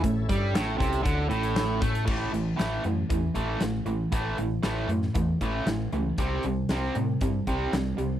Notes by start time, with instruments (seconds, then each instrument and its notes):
Already playing: tonewheel organ C#4 E4 A4
0.03 fingered electric bass A1, overdriven electric guitar A2, kick, closed hi-hat
0.29 fingered electric bass G2, overdriven electric guitar G3, kick, closed hi-hat
0.54 fingered electric bass A1, overdriven electric guitar A2, snare, closed hi-hat
0.78 fingered electric bass C2, overdriven electric guitar C3, kick, closed hi-hat
0.93 closed hi-hat
1.03 fingered electric bass D2, overdriven electric guitar D3, kick, closed hi-hat
1.29 fingered electric bass A1, overdriven electric guitar A2, closed hi-hat
1.43 closed hi-hat
1.56 snare, closed hi-hat
1.81 fingered electric bass A2, overdriven electric guitar A3, kick, snare, closed hi-hat
1.95 closed hi-hat
2.05 fingered electric bass A1, overdriven electric guitar A2 E3 A3, kick, crash
2.32 fingered electric bass A1, overdriven electric guitar A2 E3, closed hi-hat
2.56 fingered electric bass A1, overdriven electric guitar A2 E3 A3, snare, closed hi-hat
2.84 fingered electric bass F#2, overdriven electric guitar A2 E3, closed hi-hat
3.09 fingered electric bass E2, overdriven electric guitar A2 E3, kick, closed hi-hat
3.35 fingered electric bass A1, overdriven electric guitar A2 E3 A3, kick, closed hi-hat
3.60 fingered electric bass A1, overdriven electric guitar A2 E3, snare, closed hi-hat
3.86 fingered electric bass A1, overdriven electric guitar A2 E3, closed hi-hat
4.12 fingered electric bass A1, overdriven electric guitar A2 E3 A3, kick, closed hi-hat
4.38 fingered electric bass A1, overdriven electric guitar A2 E3, closed hi-hat
4.63 fingered electric bass A1, overdriven electric guitar A2 E3 A3, snare, closed hi-hat
4.88 fingered electric bass F#2, overdriven electric guitar A2 E3, closed hi-hat
5.02 snare
5.15 fingered electric bass E2, overdriven electric guitar A2 E3, kick, closed hi-hat
5.41 fingered electric bass A1, overdriven electric guitar A2 E3 A3, kick, closed hi-hat
5.66 fingered electric bass A1, overdriven electric guitar A2 E3, snare, closed hi-hat
5.92 fingered electric bass C#2, overdriven electric guitar A2 E3, closed hi-hat
6.18 fingered electric bass C2, overdriven electric guitar C3 G3 C4, kick, closed hi-hat
6.43 fingered electric bass C2, overdriven electric guitar C3 G3, closed hi-hat
6.69 fingered electric bass C2, overdriven electric guitar C3 G3 C4, snare, closed hi-hat
6.95 fingered electric bass A2, overdriven electric guitar C3 G3, closed hi-hat
7.21 fingered electric bass G2, overdriven electric guitar C3 G3, kick, closed hi-hat
7.47 fingered electric bass C2, overdriven electric guitar C3 G3 C4, kick, closed hi-hat
7.73 fingered electric bass C2, overdriven electric guitar C3 G3, snare, closed hi-hat
7.98 fingered electric bass C2, overdriven electric guitar C3 G3, closed hi-hat